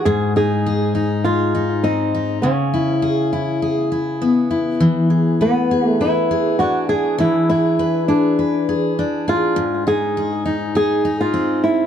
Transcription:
Already playing: steel-string acoustic guitar D4 G#4 B4
0.05 steel-string acoustic guitar G#2, nylon-string guitar G#4
0.36 steel-string acoustic guitar D#4, nylon-string guitar G#4
0.66 steel-string acoustic guitar G#4
0.95 steel-string acoustic guitar D#4
1.24 nylon-string guitar F4, steel-string acoustic guitar G#4
1.55 steel-string acoustic guitar D#4
1.84 steel-string acoustic guitar C4, nylon-string guitar D#4
2.15 steel-string acoustic guitar D#4
2.42 steel-string acoustic guitar C#3, nylon-string guitar C#4
2.74 steel-string acoustic guitar E4
3.02 steel-string acoustic guitar G#4
3.33 steel-string acoustic guitar E4
3.62 steel-string acoustic guitar G#4
3.75 nylon-string guitar B3
3.92 steel-string acoustic guitar E4
4.22 steel-string acoustic guitar B3
4.51 steel-string acoustic guitar E4
4.80 steel-string acoustic guitar E3
5.10 steel-string acoustic guitar G#4
5.41 nylon-string guitar B3, steel-string acoustic guitar B4
5.71 steel-string acoustic guitar G#4
5.89 nylon-string guitar A3
6.01 nylon-string guitar E4, steel-string acoustic guitar B4
6.31 steel-string acoustic guitar G#4
6.59 steel-string acoustic guitar D4, nylon-string guitar F#4
6.89 steel-string acoustic guitar G#4, nylon-string guitar G#4
7.18 steel-string acoustic guitar E3, nylon-string guitar E4
7.49 nylon-string guitar E4, steel-string acoustic guitar G#4
7.79 steel-string acoustic guitar B4
8.08 nylon-string guitar D4, steel-string acoustic guitar G#4
8.39 steel-string acoustic guitar B4
8.69 steel-string acoustic guitar G#4
8.99 steel-string acoustic guitar D4
9.28 nylon-string guitar F4, steel-string acoustic guitar G#4
9.56 steel-string acoustic guitar G#2
9.87 steel-string acoustic guitar D#4, nylon-string guitar G#4
10.17 steel-string acoustic guitar G#4
10.46 steel-string acoustic guitar D#4
10.75 steel-string acoustic guitar G#4, nylon-string guitar G#4
11.05 steel-string acoustic guitar D#4
11.21 nylon-string guitar F4
11.34 steel-string acoustic guitar C4
11.64 nylon-string guitar E4

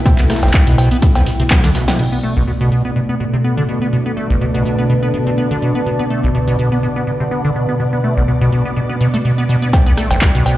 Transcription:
Already playing: string machine B2 A3 E4
0.06 acid bass B2, kick, closed hi-hat, cowbell, shaker
0.18 acid bass B3, clap, closed hi-hat, shaker
0.30 acid bass A3, cross-stick, snare, open hi-hat, shaker
0.36 snare, shaker
0.43 acid bass B1, snare, cowbell, shaker
0.48 snare, shaker
0.54 acid bass B2, kick, snare, clap, closed hi-hat, shaker
0.67 acid bass B2, closed hi-hat, shaker
0.78 acid bass B2, open hi-hat, cowbell, shaker
0.91 acid bass B3, closed hi-hat, shaker
1.02 acid bass B2, kick, closed hi-hat, shaker
1.15 acid bass B3, snare, closed hi-hat, cowbell, shaker
1.26 acid bass B2, open hi-hat, shaker
1.40 acid bass C3, closed hi-hat, shaker
1.50 acid bass B3, kick, snare, clap, closed hi-hat, cowbell, shaker
1.64 acid bass D3, snare, closed hi-hat, shaker
1.75 acid bass B2, snare, open hi-hat, shaker
1.88 acid bass B3, snare, closed hi-hat, cowbell, shaker
1.99 acid bass B2, string machine B2 A3 D5, ambient pad D4, crash
2.12 acid bass B3
2.23 acid bass A3
2.36 acid bass B1
2.48 acid bass B2
2.61 acid bass B2
2.69 acid bass B2, ambient pad B4
2.85 acid bass B3
2.96 acid bass B2
3.09 acid bass B3
3.19 acid bass B2, ambient pad A5
3.33 acid bass C3
3.44 acid bass B3
3.57 acid bass D3
3.69 acid bass B2
3.82 acid bass B3
3.93 acid bass B2
4.06 acid bass B3
4.17 acid bass A3
4.30 acid bass B1
4.41 acid bass B2
4.54 acid bass B2
4.65 acid bass B2
4.78 acid bass B3
4.90 acid bass B2
5.03 acid bass B3
5.14 acid bass B2
5.27 acid bass C3
5.38 acid bass B3
5.51 acid bass D3
5.62 acid bass B2
5.75 acid bass B3
5.86 acid bass B2, string machine B3
5.99 acid bass B3
6.10 acid bass A3
6.23 acid bass B1
6.35 acid bass B2
6.48 acid bass B2
6.59 acid bass B2
6.72 acid bass B3
6.83 acid bass B2
6.96 acid bass B3
7.07 acid bass B2
7.20 acid bass C3
7.31 acid bass B3
7.44 acid bass D3
7.56 acid bass B2
7.69 acid bass B3
7.80 acid bass B2
7.93 acid bass B3
8.04 acid bass A3
8.17 acid bass B1
8.28 acid bass B2
8.41 acid bass B2
8.52 acid bass B2
8.65 acid bass B3
8.76 acid bass B2
8.89 acid bass B3
9.01 acid bass B2
9.14 acid bass A3
9.25 acid bass B2
9.38 acid bass B3
9.49 acid bass B2
9.62 acid bass B3
9.73 acid bass B2, string machine B2 A3 D5, kick, closed hi-hat, cowbell, shaker
9.86 acid bass B3, snare, shaker
9.97 acid bass A3, cross-stick, open hi-hat, shaker
10.11 acid bass B1, snare, closed hi-hat, cowbell, shaker
10.21 acid bass B2, kick, snare, clap, closed hi-hat, shaker
10.35 acid bass B2, closed hi-hat, shaker
10.46 acid bass B2, open hi-hat, cowbell, shaker

